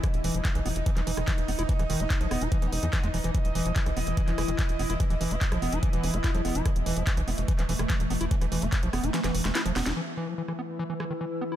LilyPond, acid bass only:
\new Staff \with { instrumentName = "Acid bass" } { \clef bass \time 4/4 \tempo 4 = 145 e16 r16 e16 f16 e16 e16 b16 r16 e16 e16 e16 dis16 e16 r16 b16 e'16 | e16 e16 dis16 b16 r16 f16 b16 e'16 e16 e16 r16 e16 e16 gis16 e16 e16 | e16 r16 e16 f16 e16 e16 b16 r16 e16 e16 e16 dis16 e16 r16 b16 e'16 | e16 e16 e16 b16 r16 f16 b16 e'16 e16 e8 b16 e'16 f16 b16 e'16 |
e16 r16 e16 f16 e16 e16 b16 r16 e16 e16 e16 dis16 e16 r16 b16 e'16 | e16 e16 e16 b16 r16 f16 b16 e'16 e16 e8 b16 e'16 f16 b16 e'16 | e16 r16 e16 f16 e16 e16 b16 r16 e16 e16 e16 dis16 e16 r16 b16 e'16 | }